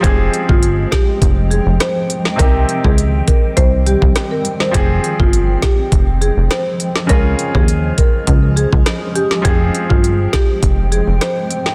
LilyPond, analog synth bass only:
\new Staff \with { instrumentName = "Analog synth bass" } { \clef bass \time 4/4 \key f \minor \tempo 4 = 102 f,,8 r16 g,,8. r8 f,,8. f,,16 r4 | c,8 r16 des,8. r8 c,8. c,16 r4 | f,,8 r16 g,,8. r8 f,,8. f,,16 r4 | des,8 r16 ees,8. r8 des,8. des,16 r4 |
f,,8 r16 g,,8. r8 f,,8. f,,16 r4 | }